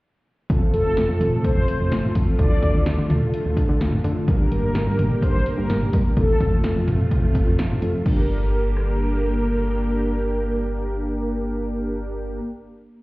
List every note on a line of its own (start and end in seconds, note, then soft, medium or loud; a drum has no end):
0.50 0.60 F1 loud
0.50 2.37 C3 medium
0.50 4.24 A3 medium
0.50 2.35 A3 medium
0.50 2.35 C4 medium
0.50 4.24 F4 medium
0.50 2.35 F4 medium
0.50 2.35 A4 medium
0.50 kick loud
0.50 closed hi-hat medium
0.74 0.84 F1 loud
0.74 1.47 A4 medium
0.74 closed hi-hat medium
0.85 0.95 F1 medium
0.97 1.07 F1 loud
0.97 snare loud
0.97 closed hi-hat medium
1.09 1.19 F2 loud
1.21 1.31 F1 loud
1.21 closed hi-hat medium
1.21 mid tom medium
1.44 1.67 C5 loud
1.44 kick loud
1.44 closed hi-hat medium
1.56 1.66 F1 loud
1.68 2.12 C5 loud
1.68 closed hi-hat medium
1.80 1.90 F2 medium
1.92 2.02 F1 loud
1.92 snare loud
1.92 closed hi-hat medium
2.03 mid tom medium
2.15 2.26 F2 loud
2.15 kick loud
2.15 closed hi-hat medium
2.39 2.49 D2 loud
2.39 6.13 D3 medium
2.39 4.24 A3 medium
2.39 4.24 D4 medium
2.39 4.24 F4 medium
2.39 4.24 A4 medium
2.39 3.06 D5 loud
2.39 kick loud
2.39 closed hi-hat medium
2.63 2.73 D2 loud
2.63 kick loud
2.63 closed hi-hat medium
2.74 2.85 D2 loud
2.86 2.96 D2 loud
2.86 snare loud
2.86 closed hi-hat medium
2.98 3.08 D3 medium
3.10 3.20 D2 loud
3.10 closed hi-hat medium
3.10 mid tom medium
3.34 closed hi-hat medium
3.45 3.56 D2 medium
3.57 kick medium
3.57 closed hi-hat medium
3.69 3.79 D3 loud
3.81 3.91 D2 loud
3.81 snare loud
3.81 closed hi-hat medium
3.92 mid tom medium
4.04 4.14 D3 loud
4.04 closed hi-hat medium
4.28 4.38 G1 loud
4.28 6.13 A#3 medium
4.28 6.15 A#3 medium
4.28 6.13 D4 medium
4.28 6.15 G4 medium
4.28 6.13 G4 medium
4.28 6.13 A#4 medium
4.28 kick loud
4.28 closed hi-hat medium
4.52 4.62 G1 loud
4.52 5.25 A#4 loud
4.52 closed hi-hat medium
4.63 4.74 G1 medium
4.75 4.85 G1 loud
4.75 snare loud
4.75 closed hi-hat medium
4.87 4.97 G2 loud
4.99 5.09 G1 loud
4.99 closed hi-hat medium
4.99 mid tom medium
5.22 5.44 C5 loud
5.22 kick loud
5.22 closed hi-hat medium
5.34 5.44 G1 medium
5.46 5.90 A#4 medium
5.46 closed hi-hat medium
5.58 5.68 G2 loud
5.70 5.80 G1 loud
5.70 snare loud
5.70 closed hi-hat medium
5.81 mid tom medium
5.93 6.04 G2 loud
5.93 kick loud
5.93 closed hi-hat medium
6.17 6.27 F1 loud
6.17 8.04 C3 medium
6.17 8.02 A3 medium
6.17 8.04 A3 medium
6.17 8.02 C4 medium
6.17 8.04 F4 medium
6.17 8.02 F4 medium
6.17 6.84 A4 loud
6.17 8.02 A4 medium
6.17 kick loud
6.17 closed hi-hat medium
6.40 6.51 F1 loud
6.40 kick loud
6.40 closed hi-hat medium
6.52 6.62 F1 loud
6.64 6.74 F1 loud
6.64 snare loud
6.64 closed hi-hat medium
6.76 6.86 F2 loud
6.88 6.98 F1 loud
6.88 closed hi-hat medium
6.88 mid tom medium
7.11 kick loud
7.11 closed hi-hat medium
7.23 7.33 F1 loud
7.35 kick medium
7.35 closed hi-hat medium
7.47 7.57 F2 loud
7.59 7.69 F1 loud
7.59 snare loud
7.59 closed hi-hat medium
7.70 mid tom medium
7.82 7.92 F2 loud
7.82 closed hi-hat medium
8.06 12.39 G1 loud
8.06 12.39 D3 medium
8.06 12.39 A#3 medium
8.06 12.39 D4 medium
8.06 12.39 G4 medium
8.06 12.40 G4 medium
8.06 12.39 A#4 medium
8.06 kick loud
8.06 crash medium
8.77 cross-stick medium